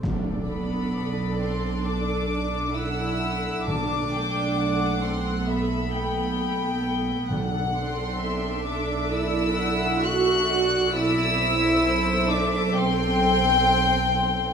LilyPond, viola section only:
\new Staff \with { instrumentName = "Viola section" } { \time 4/4 \key b \phrygian \tempo 4 = 66 <d' a'>1 | <a a'>1 | <d' a'>1 | <c' a'>1 | }